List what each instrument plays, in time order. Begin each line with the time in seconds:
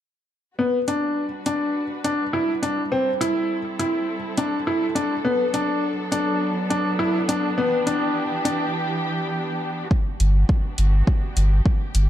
0.59 string section G3 D4 F#4 B4, upright piano B3
0.88 upright piano D4, closed hi-hat
1.46 upright piano D4, closed hi-hat
2.04 upright piano D4, closed hi-hat
2.33 upright piano E4
2.62 upright piano D4, closed hi-hat
2.92 upright piano C4, string section C4 E4 A4
3.21 upright piano E4, closed hi-hat
3.79 upright piano E4, closed hi-hat
4.37 upright piano D4, closed hi-hat
4.67 upright piano E4
4.95 upright piano D4, closed hi-hat
5.24 string section F#3 B3 D4, upright piano B3
5.54 upright piano D4, closed hi-hat
6.12 upright piano D4, closed hi-hat
6.70 upright piano D4, closed hi-hat
6.99 upright piano E4
7.29 upright piano D4, closed hi-hat
7.58 string section E3 G4, upright piano B3
7.87 upright piano D4, closed hi-hat
8.45 upright piano D4, closed hi-hat
9.91 string section B3 D4 F#4 G4, kick
10.20 sub bass G1, closed hi-hat
10.49 kick
10.78 sub bass G1, closed hi-hat
11.07 kick
11.37 sub bass G1, closed hi-hat
11.66 kick
11.95 sub bass G1, closed hi-hat